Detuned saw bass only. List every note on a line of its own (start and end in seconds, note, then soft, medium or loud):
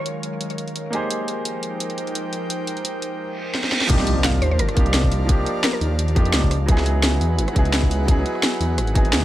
3.89 4.41 C2 loud
4.42 4.61 D#2 medium
4.59 4.68 G1 loud
4.77 5.45 C2 medium
5.81 6.18 D#2 medium
6.16 6.32 F2 medium
6.34 6.59 C#2 loud
6.60 6.68 C#2 medium
6.68 7.20 C#2 loud
7.21 7.40 E2 medium
7.38 7.47 G#1 loud
7.56 8.24 C#2 medium
8.60 8.79 E2 medium
8.78 8.94 G#1 medium
8.95 9.14 G#1 loud
9.13 9.25 D#2 loud